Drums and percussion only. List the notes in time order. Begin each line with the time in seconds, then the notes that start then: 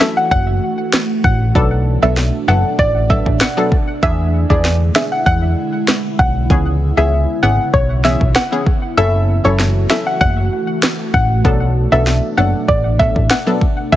0.01 cross-stick, snare
0.31 kick
0.93 cross-stick, snare
1.24 kick
1.55 kick
2.17 snare
2.79 kick
3.10 kick
3.26 kick
3.41 cross-stick, snare
3.72 kick
4.03 kick
4.50 kick
4.65 snare
4.96 cross-stick, snare
5.26 kick
5.88 cross-stick, snare
6.19 kick
6.50 kick
7.74 kick
8.05 snare
8.21 kick
8.36 cross-stick, snare
8.66 kick
9.59 snare
9.90 cross-stick, snare
10.21 kick
10.83 cross-stick, snare
11.14 kick
11.45 kick
12.07 snare
12.69 kick
13.00 kick
13.16 kick
13.30 cross-stick, snare
13.61 kick
13.92 kick